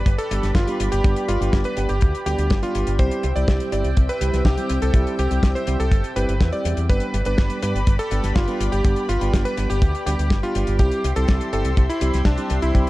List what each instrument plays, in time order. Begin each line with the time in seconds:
Already playing: analog synth pad G4 B4 D5 B5, electric grand piano B4
0.06 fingered electric bass G1, kick, closed hi-hat
0.18 electric grand piano A4, closed hi-hat
0.31 fingered electric bass G1, tine electric piano G3 B3 D4 G4, closed hi-hat
0.43 fingered electric bass G1, snare, closed hi-hat
0.55 fingered electric bass G1, electric grand piano F4, kick, snare, closed hi-hat
0.67 tine electric piano G3 B3 D4 G4, closed hi-hat
0.80 fingered electric bass G1, closed hi-hat
0.92 fingered electric bass G1, electric grand piano G4, closed hi-hat
1.04 fingered electric bass G1, tine electric piano G3 B3 D4 G4, kick, closed hi-hat
1.16 closed hi-hat
1.28 fingered electric bass G1, electric grand piano F4, closed hi-hat
1.41 fingered electric bass G1, tine electric piano G3 B3 D4 G4, closed hi-hat
1.53 fingered electric bass G1, kick, snare, closed hi-hat
1.64 electric grand piano B4, closed hi-hat
1.77 fingered electric bass G1, tine electric piano G3 B3 D4 G4, closed hi-hat
1.89 fingered electric bass G1, electric grand piano G4, closed hi-hat
2.01 fingered electric bass D2, kick, closed hi-hat
2.15 closed hi-hat
2.26 fingered electric bass D2, tine electric piano G3 B3 D4 G4, electric grand piano G4, closed hi-hat
2.38 fingered electric bass D2, closed hi-hat
2.50 fingered electric bass G1, kick, snare, closed hi-hat
2.62 tine electric piano G3 B3 D4 G4, electric grand piano F4, closed hi-hat
2.75 fingered electric bass G1, closed hi-hat
2.87 fingered electric bass G1, closed hi-hat
2.99 fingered electric bass C2, tine electric piano G3 C4 E4 G4, analog synth pad C4 E5 G5, electric grand piano C5, kick, closed hi-hat
3.11 closed hi-hat
3.23 fingered electric bass C2, closed hi-hat
3.36 fingered electric bass C2, tine electric piano G3 C4 E4 G4, electric grand piano D5, closed hi-hat
3.48 fingered electric bass C2, kick, snare, closed hi-hat
3.60 closed hi-hat
3.72 fingered electric bass G1, tine electric piano G3 C4 E4 G4, electric grand piano D5, closed hi-hat
3.84 fingered electric bass C2, closed hi-hat
3.97 fingered electric bass C2, kick, closed hi-hat
4.09 electric grand piano B4, closed hi-hat
4.21 fingered electric bass C2, tine electric piano G3 C4 E4 G4, closed hi-hat
4.33 fingered electric bass C2, snare, closed hi-hat
4.45 fingered electric bass C2, electric grand piano G4, kick, snare, closed hi-hat
4.58 tine electric piano G3 C4 E4 G4, closed hi-hat
4.69 fingered electric bass C2, closed hi-hat
4.82 fingered electric bass C2, electric grand piano A4, closed hi-hat
4.94 fingered electric bass C2, tine electric piano G3 C4 E4 G4, kick, closed hi-hat
5.07 closed hi-hat
5.19 fingered electric bass C2, electric grand piano G4, closed hi-hat
5.31 fingered electric bass C2, tine electric piano G3 C4 E4 G4, closed hi-hat
5.43 fingered electric bass C2, kick, snare, closed hi-hat
5.55 electric grand piano C5, closed hi-hat
5.67 fingered electric bass C2, tine electric piano G3 C4 E4 G4, closed hi-hat
5.80 fingered electric bass C2, electric grand piano A4, closed hi-hat
5.92 fingered electric bass G1, kick, closed hi-hat
6.04 closed hi-hat
6.16 fingered electric bass G1, tine electric piano G3 C4 E4 G4, electric grand piano B4, closed hi-hat
6.28 fingered electric bass G1, closed hi-hat
6.41 fingered electric bass E2, kick, snare, closed hi-hat
6.52 tine electric piano G3 C4 E4 G4, electric grand piano D5, closed hi-hat
6.65 fingered electric bass E2, closed hi-hat
6.77 fingered electric bass E2, closed hi-hat
6.89 fingered electric bass G1, tine electric piano G3 B3 D4 G4, analog synth pad G4 B4 D5 B5, electric grand piano B4, kick, closed hi-hat
7.00 closed hi-hat
7.14 fingered electric bass G1, closed hi-hat
7.25 fingered electric bass G1, tine electric piano G3 B3 D4 G4, electric grand piano B4, closed hi-hat
7.38 fingered electric bass G1, kick, snare, closed hi-hat
7.50 closed hi-hat
7.62 fingered electric bass G2, tine electric piano G3 B3 D4 G4, electric grand piano B4, closed hi-hat
7.75 fingered electric bass G1, closed hi-hat
7.87 fingered electric bass G1, kick, closed hi-hat
7.99 electric grand piano A4, closed hi-hat
8.11 fingered electric bass G1, tine electric piano G3 B3 D4 G4, closed hi-hat
8.24 fingered electric bass G1, snare, closed hi-hat
8.36 fingered electric bass G1, electric grand piano F4, kick, snare, closed hi-hat
8.48 tine electric piano G3 B3 D4 G4, closed hi-hat
8.60 fingered electric bass G1, closed hi-hat
8.72 fingered electric bass G1, electric grand piano G4, closed hi-hat
8.84 fingered electric bass G1, tine electric piano G3 B3 D4 G4, kick, closed hi-hat
8.96 closed hi-hat
9.09 fingered electric bass G1, electric grand piano F4, closed hi-hat
9.21 fingered electric bass G1, tine electric piano G3 B3 D4 G4, closed hi-hat
9.34 fingered electric bass G1, kick, snare, closed hi-hat
9.45 electric grand piano B4, closed hi-hat
9.57 fingered electric bass G1, tine electric piano G3 B3 D4 G4, closed hi-hat
9.70 fingered electric bass G1, electric grand piano G4, closed hi-hat
9.82 fingered electric bass D2, kick, closed hi-hat
9.95 closed hi-hat
10.06 fingered electric bass D2, tine electric piano G3 B3 D4 G4, electric grand piano G4, closed hi-hat
10.19 fingered electric bass D2, closed hi-hat
10.30 fingered electric bass G1, kick, snare, closed hi-hat
10.43 tine electric piano G3 B3 D4 G4, electric grand piano F4, closed hi-hat
10.55 fingered electric bass G1, closed hi-hat
10.67 fingered electric bass G1, closed hi-hat
10.79 fingered electric bass C2, tine electric piano G3 C4 E4 G4, electric grand piano G4, analog synth pad C5 E5 C6, kick, closed hi-hat
10.91 closed hi-hat
11.04 fingered electric bass C2, closed hi-hat
11.16 fingered electric bass C2, tine electric piano G3 C4 E4 G4, electric grand piano A4, closed hi-hat
11.28 fingered electric bass C2, kick, snare, closed hi-hat
11.41 closed hi-hat
11.53 fingered electric bass G1, tine electric piano G3 C4 E4 G4, electric grand piano A4, closed hi-hat
11.65 fingered electric bass C2, closed hi-hat
11.77 fingered electric bass C2, kick, closed hi-hat
11.90 electric grand piano E4, closed hi-hat
12.01 fingered electric bass C2, tine electric piano G3 C4 E4 G4, closed hi-hat
12.14 fingered electric bass C2, snare, closed hi-hat
12.25 fingered electric bass C2, electric grand piano D4, kick, snare, closed hi-hat
12.38 tine electric piano G3 C4 E4 G4, closed hi-hat
12.50 fingered electric bass C2, closed hi-hat
12.62 fingered electric bass C2, electric grand piano E4, closed hi-hat
12.75 fingered electric bass C2, tine electric piano G3 C4 E4 G4, kick, closed hi-hat